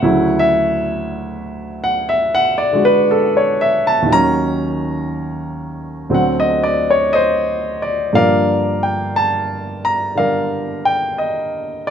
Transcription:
0.00 4.08 D2 medium
0.00 4.08 C#3 medium
0.00 4.08 F#3 medium
0.00 4.09 E4 medium
0.00 0.35 F#5 medium
0.39 0.73 E5 medium
1.84 2.02 F#5 medium
2.09 2.41 E5 medium
2.35 2.71 F#5 loud
2.58 2.82 D5 medium
2.73 4.08 D3 medium
2.73 4.09 G#3 soft
2.73 4.09 F#4 medium
2.85 3.04 B4 medium
3.11 3.43 A4 medium
3.37 3.73 C#5 medium
3.61 3.84 E5 medium
3.87 4.06 A5 medium
4.02 6.08 D#2 medium
4.02 6.10 D#3 medium
4.09 6.09 F#3 medium
4.09 6.14 C#4 medium
4.09 4.53 A#5 loud
6.10 8.13 D2 medium
6.10 8.12 D3 soft
6.10 8.13 F#3 medium
6.10 8.14 C4 medium
6.14 6.46 F#5 medium
6.40 6.76 D#5 medium
6.64 6.87 D5 medium
6.91 7.09 C#5 medium
7.13 7.56 C5 medium
7.13 7.77 D#5 medium
7.82 8.15 D5 medium
8.13 11.90 G2 soft
8.13 10.14 D3 soft
8.13 11.90 F3 soft
8.13 11.90 A#3 medium
8.13 10.14 A#4 medium
8.13 10.14 D5 medium
8.13 8.85 F5 medium
8.83 9.17 G5 medium
9.16 9.86 A5 medium
9.85 10.18 A#5 medium
10.15 11.90 D3 soft
10.15 11.90 G3 soft
10.15 11.90 A#4 medium
10.15 11.86 D5 medium
10.15 10.82 F5 medium
10.85 11.19 G5 medium
11.18 11.89 D#5 medium
11.87 11.90 D5 medium

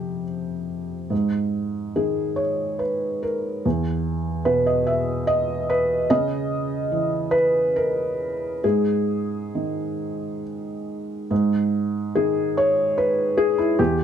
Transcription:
0.00 1.07 F2 medium
0.00 1.10 C3 soft
0.00 0.22 G4 medium
1.10 3.60 G#2 soft
1.96 3.64 D#3 soft
1.96 2.39 G#4 medium
2.36 2.80 C#5 medium
2.79 3.22 B4 medium
3.23 3.64 A#4 medium
3.65 6.06 E2 medium
4.45 6.10 B2 soft
4.45 4.66 B4 medium
4.66 4.87 D#5 medium
4.87 5.28 E5 medium
5.27 5.69 D#5 medium
5.70 6.10 B4 medium
6.10 8.60 C#3 medium
6.10 7.33 D#5 loud
6.92 8.63 E3 soft
7.31 7.75 B4 medium
7.76 8.63 A#4 medium
8.64 11.27 G#2 medium
8.64 10.43 G#4 medium
9.55 11.31 D#3 soft
11.31 13.75 G#2 medium
12.15 13.79 D#3 soft
12.15 12.57 G#4 medium
12.57 12.97 C#5 medium
12.98 13.38 B4 medium
13.37 13.58 G#4 medium
13.58 13.79 E4 medium
13.79 14.04 E2 medium
13.79 14.04 G4 medium

